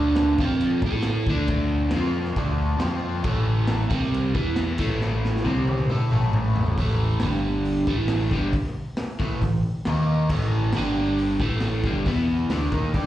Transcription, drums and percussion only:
0.16 snare loud
0.16 crash medium
0.38 kick loud
0.50 snare soft
0.61 crash medium
0.82 kick loud
1.03 snare loud
1.03 crash medium
1.27 kick loud
1.48 kick loud
1.48 crash medium
1.91 snare loud
1.91 crash medium
2.25 snare soft
2.36 kick loud
2.36 crash medium
2.80 snare loud
2.80 crash medium
3.24 kick loud
3.24 crash medium
3.67 snare loud
3.67 crash medium
3.91 kick loud
4.02 snare soft
4.14 crash medium
4.35 kick loud
4.56 snare loud
4.56 crash medium
4.78 kick loud
4.78 crash loud
5.01 snare medium
5.25 snare medium
5.36 snare medium
5.46 high tom medium
5.68 high tom medium
5.78 mid tom medium
5.90 mid tom medium
6.11 mid tom medium
6.22 mid tom medium
6.33 mid tom loud
6.56 floor tom loud
6.67 floor tom loud
6.78 kick loud
6.78 open hi-hat medium
6.88 snare soft
7.20 snare loud
7.20 open hi-hat medium
7.65 open hi-hat medium
7.87 kick loud
8.08 snare loud
8.08 open hi-hat medium
8.31 kick loud
8.53 kick loud
8.53 open hi-hat medium
8.64 snare soft
8.97 snare loud
8.97 open hi-hat medium
9.20 kick loud
9.42 kick medium
9.42 open hi-hat medium
9.85 snare loud
9.85 open hi-hat medium
10.29 kick loud
10.29 crash loud
10.41 snare soft
10.73 snare loud
10.73 open hi-hat medium
11.18 open hi-hat medium
11.40 kick loud
11.61 snare loud
11.61 open hi-hat medium
11.84 kick loud
12.06 kick loud
12.06 open hi-hat medium
12.18 snare soft
12.50 snare loud
12.50 open hi-hat medium
12.72 kick loud
12.94 kick loud
12.94 open hi-hat medium

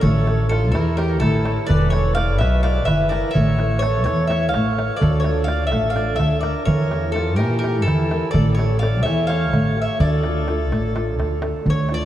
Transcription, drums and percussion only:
0.03 darbuka dum medium
0.27 darbuka tek medium
0.52 darbuka tek medium
0.75 darbuka tek medium
0.98 darbuka tek medium
1.22 darbuka tek medium
1.22 darbuka dum medium
1.45 darbuka tek medium
1.69 darbuka dum loud
1.93 darbuka tek medium
2.17 darbuka tek medium
2.41 darbuka tek medium
2.64 darbuka tek medium
2.88 darbuka tek medium
2.88 darbuka dum medium
3.12 darbuka tek medium
3.35 darbuka dum loud
3.59 darbuka tek medium
3.70 darbuka tek soft
3.82 darbuka tek medium
4.06 darbuka tek medium
4.18 darbuka tek soft
4.30 darbuka tek medium
4.42 darbuka tek soft
4.54 darbuka tek medium
4.66 darbuka tek soft
4.79 darbuka tek medium
5.01 darbuka dum loud
5.24 darbuka tek medium
5.48 darbuka tek medium
5.72 darbuka tek medium
5.96 darbuka tek medium
6.20 darbuka tek medium
6.20 darbuka dum medium
6.43 darbuka tek medium
6.67 darbuka dum medium
6.91 darbuka tek medium
7.16 darbuka tek medium
7.39 darbuka tek medium
7.64 darbuka tek medium
7.88 darbuka tek medium
7.88 darbuka dum medium
8.11 darbuka tek medium
8.35 darbuka dum medium
8.59 darbuka tek medium
8.83 darbuka tek medium
9.06 darbuka tek medium
9.30 darbuka tek medium
9.53 darbuka tek medium
9.53 darbuka dum medium
10.01 darbuka dum medium
10.13 darbuka tek soft
10.23 darbuka tek medium
10.48 darbuka tek medium
10.60 darbuka tek soft
10.72 darbuka tek medium
10.96 darbuka tek medium
11.20 darbuka tek medium
11.31 darbuka tek soft
11.42 darbuka tek medium
11.54 darbuka tek soft
11.66 darbuka dum medium
11.77 darbuka tek soft
11.89 darbuka tek medium

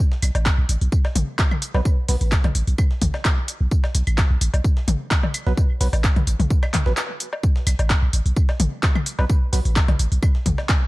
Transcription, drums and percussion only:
0.12 snare medium
0.22 snare soft
0.22 open hi-hat medium
0.22 tambourine medium
0.22 claves medium
0.35 open hi-hat soft
0.35 low woodblock medium
0.46 kick loud
0.46 snare loud
0.46 clap medium
0.46 tambourine medium
0.69 open hi-hat medium
0.69 tambourine medium
0.81 open hi-hat soft
0.92 kick loud
0.92 tambourine medium
1.05 snare medium
1.05 low woodblock medium
1.15 open hi-hat medium
1.15 mid tom medium
1.15 tambourine medium
1.39 kick loud
1.39 snare loud
1.39 clap medium
1.39 tambourine medium
1.51 mid tom medium
1.51 claves medium
1.62 open hi-hat medium
1.62 tambourine medium
1.74 snare soft
1.74 low woodblock medium
1.85 kick loud
1.85 tambourine medium
2.08 open hi-hat medium
2.21 open hi-hat soft
2.32 kick loud
2.32 snare loud
2.32 clap medium
2.32 tambourine medium
2.44 closed hi-hat soft
2.44 mid tom medium
2.44 low woodblock medium
2.55 open hi-hat medium
2.55 tambourine medium
2.67 open hi-hat soft
2.78 kick loud
2.78 tambourine medium
2.78 claves medium
2.91 snare soft
3.01 kick medium
3.01 open hi-hat medium
3.01 mid tom medium
3.01 tambourine medium
3.14 snare medium
3.14 low woodblock medium
3.25 kick loud
3.25 snare loud
3.25 clap medium
3.25 tambourine medium
3.48 open hi-hat medium
3.48 tambourine medium
3.71 kick loud
3.71 tambourine medium
3.84 snare medium
3.84 low woodblock medium
3.95 snare soft
3.95 open hi-hat medium
3.95 tambourine medium
4.07 open hi-hat soft
4.07 claves medium
4.18 kick loud
4.18 snare loud
4.18 clap medium
4.18 tambourine medium
4.41 open hi-hat medium
4.41 tambourine medium
4.54 open hi-hat soft
4.54 low woodblock medium
4.64 kick loud
4.64 tambourine medium
4.77 snare medium
4.88 open hi-hat medium
4.88 mid tom medium
4.88 tambourine medium
5.11 kick loud
5.11 snare loud
5.11 clap medium
5.11 tambourine medium
5.23 mid tom medium
5.23 low woodblock medium
5.34 open hi-hat medium
5.34 tambourine medium
5.34 claves medium
5.47 snare soft
5.57 kick loud
5.57 tambourine medium
5.81 open hi-hat medium
5.93 open hi-hat soft
5.93 low woodblock medium
6.04 kick loud
6.04 snare loud
6.04 clap medium
6.04 tambourine medium
6.16 closed hi-hat soft
6.16 mid tom medium
6.27 open hi-hat medium
6.27 tambourine medium
6.40 open hi-hat soft
6.40 mid tom medium
6.50 kick loud
6.50 tambourine medium
6.63 snare soft
6.63 claves medium
6.63 low woodblock medium
6.74 kick medium
6.74 clap medium
6.74 open hi-hat medium
6.74 mid tom loud
6.74 tambourine medium
6.86 snare medium
6.97 snare loud
6.97 clap medium
6.97 tambourine medium
7.20 open hi-hat medium
7.20 tambourine medium
7.33 low woodblock medium
7.43 kick loud
7.43 tambourine medium
7.56 snare medium
7.67 snare soft
7.67 open hi-hat medium
7.67 tambourine medium
7.67 claves medium
7.79 open hi-hat soft
7.79 low woodblock medium
7.90 kick loud
7.90 snare loud
7.90 clap medium
7.90 tambourine medium
8.13 open hi-hat medium
8.13 tambourine medium
8.26 open hi-hat soft
8.36 kick loud
8.36 tambourine medium
8.49 snare medium
8.49 low woodblock medium
8.60 open hi-hat medium
8.60 mid tom loud
8.60 tambourine medium
8.83 kick loud
8.83 snare loud
8.83 clap loud
8.83 tambourine medium
8.95 mid tom medium
8.95 claves medium
9.06 open hi-hat medium
9.06 tambourine medium
9.19 snare soft
9.19 low woodblock medium
9.29 kick loud
9.29 tambourine medium
9.53 open hi-hat medium
9.65 open hi-hat soft
9.76 kick loud
9.76 snare loud
9.76 clap medium
9.76 tambourine medium
9.88 closed hi-hat soft
9.88 mid tom medium
9.88 low woodblock medium
9.99 open hi-hat medium
9.99 tambourine medium
10.12 open hi-hat soft
10.22 kick loud
10.22 tambourine medium
10.22 claves medium
10.35 snare soft
10.46 kick medium
10.46 open hi-hat medium
10.46 mid tom loud
10.46 tambourine medium
10.58 snare medium
10.58 low woodblock medium
10.69 kick loud
10.69 snare loud
10.69 clap loud
10.69 tambourine medium

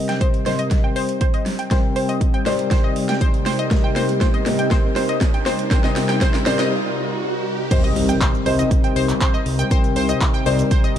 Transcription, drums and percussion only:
0.09 snare soft
0.09 closed hi-hat medium
0.21 kick loud
0.21 closed hi-hat medium
0.34 closed hi-hat soft
0.46 snare soft
0.46 open hi-hat medium
0.59 closed hi-hat medium
0.71 kick loud
0.71 snare soft
0.71 closed hi-hat medium
0.96 open hi-hat medium
1.09 closed hi-hat medium
1.21 kick loud
1.21 closed hi-hat medium
1.34 closed hi-hat soft
1.46 snare medium
1.46 open hi-hat medium
1.59 closed hi-hat medium
1.71 kick loud
1.71 snare medium
1.71 closed hi-hat medium
1.96 open hi-hat loud
2.09 closed hi-hat soft
2.21 kick loud
2.21 closed hi-hat medium
2.34 closed hi-hat soft
2.46 snare medium
2.46 open hi-hat medium
2.59 closed hi-hat medium
2.71 kick loud
2.71 snare medium
2.71 closed hi-hat medium
2.96 open hi-hat loud
3.09 snare medium
3.09 closed hi-hat medium
3.21 kick loud
3.21 closed hi-hat medium
3.34 closed hi-hat soft
3.46 snare medium
3.46 open hi-hat medium
3.59 closed hi-hat medium
3.71 kick loud
3.71 snare medium
3.71 closed hi-hat medium
3.96 snare medium
3.96 open hi-hat loud
4.09 closed hi-hat soft
4.21 kick loud
4.21 snare medium
4.21 closed hi-hat medium
4.34 closed hi-hat soft
4.46 snare medium
4.46 open hi-hat loud
4.59 closed hi-hat soft
4.71 kick loud
4.71 snare medium
4.71 closed hi-hat medium
4.96 snare medium
4.96 open hi-hat loud
5.09 closed hi-hat medium
5.21 kick loud
5.21 snare medium
5.21 closed hi-hat medium
5.34 closed hi-hat soft
5.46 snare medium
5.46 open hi-hat medium
5.59 closed hi-hat medium
5.71 kick loud
5.71 snare medium
5.71 closed hi-hat medium
5.84 snare medium
5.84 closed hi-hat soft
5.96 snare medium
5.96 open hi-hat loud
6.09 snare medium
6.09 closed hi-hat soft
6.21 kick loud
6.21 snare medium
6.21 closed hi-hat medium
6.34 snare medium
6.34 closed hi-hat soft
6.46 snare loud
6.46 open hi-hat loud
6.59 snare medium
6.59 closed hi-hat soft
7.71 kick loud
7.71 closed hi-hat medium
7.71 crash loud
7.71 shaker medium
7.84 closed hi-hat soft
7.84 shaker soft
7.96 open hi-hat loud
8.09 closed hi-hat medium
8.09 shaker medium
8.21 kick loud
8.21 clap loud
8.21 closed hi-hat medium
8.21 shaker medium
8.34 shaker soft
8.46 open hi-hat medium
8.59 closed hi-hat medium
8.59 shaker medium
8.71 kick loud
8.71 closed hi-hat medium
8.71 shaker medium
8.84 closed hi-hat soft
8.84 shaker soft
8.96 open hi-hat loud
9.09 clap soft
9.09 closed hi-hat medium
9.09 shaker medium
9.21 kick loud
9.21 clap loud
9.21 closed hi-hat medium
9.21 shaker medium
9.34 shaker soft
9.46 open hi-hat medium
9.59 closed hi-hat medium
9.59 shaker medium
9.71 kick loud
9.71 closed hi-hat medium
9.71 shaker medium
9.84 closed hi-hat soft
9.84 shaker soft
9.96 open hi-hat loud
10.09 closed hi-hat medium
10.09 shaker medium
10.21 kick loud
10.21 clap loud
10.21 closed hi-hat medium
10.21 shaker medium
10.34 shaker soft
10.46 open hi-hat loud
10.59 closed hi-hat medium
10.59 shaker medium
10.71 kick loud
10.71 closed hi-hat medium
10.71 shaker medium
10.84 closed hi-hat soft
10.84 shaker soft

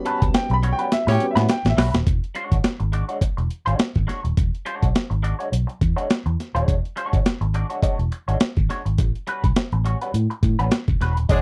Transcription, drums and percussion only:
0.06 closed hi-hat medium
0.22 kick loud
0.22 closed hi-hat medium
0.34 snare loud
0.34 closed hi-hat medium
0.50 closed hi-hat soft
0.63 closed hi-hat medium
0.79 closed hi-hat medium
0.92 snare medium
0.92 closed hi-hat loud
1.08 snare medium
1.08 closed hi-hat soft
1.20 closed hi-hat medium
1.37 snare medium
1.37 closed hi-hat medium
1.49 snare loud
1.49 closed hi-hat medium
1.65 snare medium
1.65 closed hi-hat soft
1.78 snare loud
1.78 open hi-hat medium
1.94 snare loud
1.94 closed hi-hat medium
2.07 kick loud
2.07 closed hi-hat medium
2.24 closed hi-hat soft
2.35 closed hi-hat medium
2.52 kick medium
2.52 closed hi-hat medium
2.64 snare loud
2.64 closed hi-hat medium
2.80 closed hi-hat soft
2.93 closed hi-hat medium
3.09 closed hi-hat soft
3.21 kick medium
3.21 closed hi-hat loud
3.38 closed hi-hat soft
3.50 closed hi-hat medium
3.67 closed hi-hat soft
3.79 snare loud
3.79 closed hi-hat medium
3.95 kick medium
3.95 closed hi-hat soft
4.09 snare soft
4.09 closed hi-hat medium
4.25 closed hi-hat soft
4.37 kick loud
4.37 closed hi-hat medium
4.55 closed hi-hat soft
4.66 closed hi-hat medium
4.83 kick medium
4.83 closed hi-hat soft
4.95 snare loud
4.95 closed hi-hat medium
5.11 closed hi-hat soft
5.24 closed hi-hat medium
5.40 closed hi-hat soft
5.53 closed hi-hat loud
5.69 closed hi-hat soft
5.81 kick medium
5.81 closed hi-hat medium
5.98 closed hi-hat medium
6.10 snare loud
6.10 closed hi-hat medium
6.26 closed hi-hat soft
6.40 snare soft
6.40 closed hi-hat medium
6.56 closed hi-hat soft
6.68 kick loud
6.68 closed hi-hat medium
6.85 closed hi-hat soft
6.97 closed hi-hat medium
7.13 kick medium
7.13 closed hi-hat soft
7.26 snare loud
7.26 closed hi-hat medium
7.41 closed hi-hat soft
7.54 closed hi-hat medium
7.70 closed hi-hat soft
7.83 kick loud
7.83 closed hi-hat loud
7.99 closed hi-hat soft
8.12 closed hi-hat medium
8.29 closed hi-hat medium
8.40 snare loud
8.40 closed hi-hat medium
8.57 kick medium
8.57 closed hi-hat soft
8.70 snare soft
8.70 closed hi-hat medium
8.86 closed hi-hat medium
8.98 kick loud
8.98 closed hi-hat medium
9.15 closed hi-hat soft
9.27 closed hi-hat medium
9.44 kick medium
9.44 closed hi-hat soft
9.56 snare loud
9.56 closed hi-hat medium
9.72 closed hi-hat soft
9.86 closed hi-hat medium
10.01 closed hi-hat medium
10.14 closed hi-hat loud
10.31 closed hi-hat soft
10.43 kick medium
10.43 closed hi-hat medium
10.60 closed hi-hat medium
10.71 snare loud
10.71 closed hi-hat medium
10.88 kick medium
10.88 closed hi-hat soft
11.01 snare soft
11.01 closed hi-hat medium
11.17 closed hi-hat medium
11.29 kick loud
11.29 closed hi-hat loud

